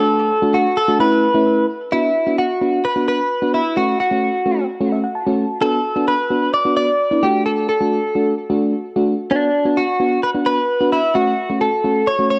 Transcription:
Already playing: fm electric piano A3 D4 F#4, clean electric guitar A4
0.42 fm electric piano A3 D4 F#4
0.54 clean electric guitar F#4
0.77 clean electric guitar A4
0.88 fm electric piano A3 D4 F#4
1.00 fm electric piano A3 C#4 E4, clean electric guitar B4
1.34 fm electric piano A3 C#4 E4
1.92 fm electric piano B3 D4 F#4, clean electric guitar E4
2.27 fm electric piano B3 D4 F#4
2.38 clean electric guitar F#4
2.61 fm electric piano B3 D4 F#4
2.85 clean electric guitar B4
2.96 fm electric piano B3 D4 F#4
3.08 clean electric guitar B4
3.42 fm electric piano B3 D4 F#4
3.54 clean electric guitar E4
3.77 fm electric piano A3 C#4 F#4, clean electric guitar F#4
4.00 clean electric guitar F#4
4.11 fm electric piano A3 C#4 F#4
4.46 fm electric piano A3 C#4 F#4
4.81 fm electric piano A3 C#4 F#4
4.92 fm electric piano E5
5.04 fm electric piano F#5
5.15 fm electric piano A5
5.27 fm electric piano A3 C#4 F#4
5.61 fm electric piano B3 D4 F#4, clean electric guitar A4
5.96 fm electric piano B3 D4 F#4
6.08 clean electric guitar B4
6.30 fm electric piano B3 D4 F#4
6.54 clean electric guitar D5
6.65 fm electric piano B3 D4 F#4
6.77 clean electric guitar D5
7.11 fm electric piano B3 D4 E4
7.23 fm electric piano A3 D4 F#4, clean electric guitar G4
7.46 clean electric guitar A4
7.69 clean electric guitar A4
7.81 fm electric piano A3 D4 F#4
8.15 fm electric piano A3 D4 F#4
8.50 fm electric piano A3 D4 F#4
8.96 fm electric piano A3 D4 F#4
9.31 fm electric piano B3 D4 F#4, clean electric guitar D4
9.65 fm electric piano B3 D4 F#4
9.77 clean electric guitar F#4
10.00 fm electric piano B3 D4 F#4
10.23 clean electric guitar B4
10.34 fm electric piano B3 D4 F#4
10.46 clean electric guitar B4
10.81 fm electric piano B3 D4 F#4
10.92 clean electric guitar E4
11.15 fm electric piano A3 C#4 F#4, clean electric guitar F#4
11.50 fm electric piano A3 C#4 F#4
11.61 clean electric guitar A4
11.84 fm electric piano A3 C#4 F#4
12.07 clean electric guitar C#5
12.19 fm electric piano A3 C#4 F#4
12.30 clean electric guitar C#5

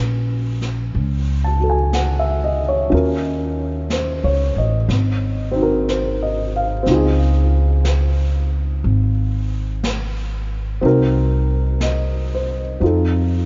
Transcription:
Already playing: upright bass A#1, grand piano C#4 E4 F#4 B4
0.61 snare
0.95 upright bass C#2, brush sweep
1.44 grand piano A5
1.60 grand piano F#4 A4
1.70 grand piano G#5
1.93 grand piano F#5, brush sweep, snare, hi-hat pedal
2.19 grand piano E5
2.44 grand piano D#5
2.69 grand piano C#5
2.90 upright bass D#2, grand piano C#4 F4 F#4, brush sweep
2.95 grand piano A#4
3.90 grand piano C5, brush sweep, snare, hi-hat pedal
4.24 upright bass C#2, grand piano C#5
4.56 upright bass A1, grand piano D#5
4.89 upright bass G#1, brush sweep, snare
5.52 grand piano C4 D#4
5.58 grand piano F#4
5.63 grand piano A#4
5.89 grand piano C5, brush sweep, snare, hi-hat pedal
6.23 grand piano D#5
6.56 grand piano F5
6.83 upright bass C#2, grand piano C4, brush sweep, snare
6.87 grand piano D#4 F4
6.94 grand piano G#4
7.85 brush sweep, snare, hi-hat pedal
8.84 upright bass G#1, brush sweep
9.83 brush sweep, snare, hi-hat pedal
10.81 upright bass C2, grand piano C4 D#4 F#4, brush sweep
10.86 grand piano A#4
11.81 grand piano D#5, brush sweep, snare, hi-hat pedal
12.35 grand piano C5
12.80 upright bass F2, grand piano C4 D#4 F4, brush sweep
12.85 grand piano A4

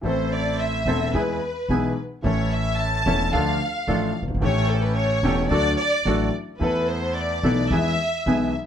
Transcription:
0.01 upright bass A1, grand piano A1 A2 E3 A3 C4, bandoneon C4 E4 A4
0.06 grand piano A4, violin section C5
0.33 violin section D5
0.60 violin section E5
0.86 upright bass E1, grand piano E1 E2 E3 A3 C4 A4, bandoneon C4 E4 A4
1.14 upright bass E2, grand piano E2 E3 G#3 B3 G#4, bandoneon B3 E4 G#4, violin section B4
1.69 upright bass B1, grand piano B1 B2 E3 G#3 B3 G#4, bandoneon B3 E4 G#4
2.22 grand piano A1 A2 E3 A3 C#4 A4, upright bass A1, bandoneon C#4 E4 A4, violin section C#5
2.53 violin section E5
2.80 violin section A5
3.05 upright bass E1, grand piano E1 E2 E3 A3 C#4 A4, bandoneon C#4 E4 A4
3.32 upright bass D2, grand piano D2 D3 F3 A3 D4 A4, bandoneon D4 F4 A4, violin section F5
3.87 upright bass A1, grand piano A1 A2 F3 A3 D4 A4, bandoneon D4 F4 A4
4.22 upright bass F#1, grand piano F#1
4.28 upright bass G1, grand piano G1
4.34 upright bass G#1, grand piano G#1
4.40 upright bass A1, grand piano A1 A2 E3 A3 C#4, bandoneon C#4 G4 A4, violin section C#5
4.45 grand piano G4
4.70 violin section A4
4.83 violin section B4
4.95 violin section C#5
5.23 upright bass E1, grand piano E1 E2 E3 A3 C#4 G4, bandoneon C#4 G4 A4
5.50 upright bass D2, grand piano D2 D3 F#3 A3 D4 A4, bandoneon D4 F#4 A4, violin section D5
5.78 violin section D5
6.05 upright bass A1, grand piano A1 A2 F#3 A3 D4 A4, bandoneon D4 F#4 A4
6.59 upright bass E2, grand piano E2 E3 A3 B3, bandoneon B3 E4 A4, violin section B4
6.63 grand piano A4
6.88 violin section C5
7.15 violin section D5
7.43 upright bass B1, grand piano B1 B2 E3 A3 B3 A4, bandoneon B3 E4 A4
7.71 upright bass E2, grand piano E2 E3 G#3 B3 G#4, bandoneon B3 E4 G#4, violin section E5
8.26 upright bass B1, grand piano B1 B2 E3 G#3 B3 G#4, bandoneon B3 E4 G#4

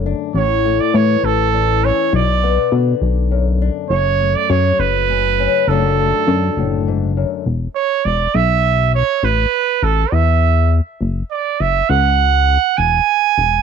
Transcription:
Already playing: analog synth bass F#1, steel-string acoustic guitar F#2 D3 A3
0.06 steel-string acoustic guitar D4
0.34 analog synth bass A1, steel-string acoustic guitar A2, trumpet C#5
0.65 steel-string acoustic guitar A3
0.80 trumpet D5
0.94 analog synth bass A2, steel-string acoustic guitar E3, trumpet C#5
1.23 analog synth bass A1, trumpet A4
1.53 steel-string acoustic guitar E2
1.84 steel-string acoustic guitar C#4, trumpet C#5
2.12 analog synth bass B1, steel-string acoustic guitar B2, trumpet D5
2.43 steel-string acoustic guitar B3
2.72 analog synth bass B2, steel-string acoustic guitar D3
3.02 analog synth bass B1
3.31 steel-string acoustic guitar F#2
3.62 steel-string acoustic guitar D4
3.90 analog synth bass F#1, steel-string acoustic guitar F#2, trumpet C#5
4.21 steel-string acoustic guitar A3
4.36 trumpet D5
4.50 analog synth bass F#2, steel-string acoustic guitar F#3, trumpet C#5
4.79 analog synth bass F#1, trumpet B4
5.09 steel-string acoustic guitar C#3
5.40 steel-string acoustic guitar C#4
5.67 analog synth bass F#1, steel-string acoustic guitar F#2 D3 A3 D4, trumpet A4
5.72 steel-string acoustic guitar F#4
6.00 steel-string acoustic guitar A3
6.27 analog synth bass F#2, steel-string acoustic guitar D3
6.57 analog synth bass F#1, steel-string acoustic guitar A2
6.88 steel-string acoustic guitar G#2
7.17 steel-string acoustic guitar F#2
7.46 analog synth bass E1
7.75 trumpet C#5
8.05 analog synth bass E1, trumpet D5
8.35 analog synth bass B1, trumpet E5
8.95 trumpet C#5
9.23 analog synth bass A1, trumpet B4
9.83 analog synth bass A1, trumpet A4
10.12 analog synth bass E2, trumpet E5
11.01 analog synth bass F#1
11.31 trumpet D5
11.60 analog synth bass F#1, trumpet E5
11.89 analog synth bass C#2, trumpet F#5
12.77 analog synth bass E1, trumpet G#5
13.38 analog synth bass E1

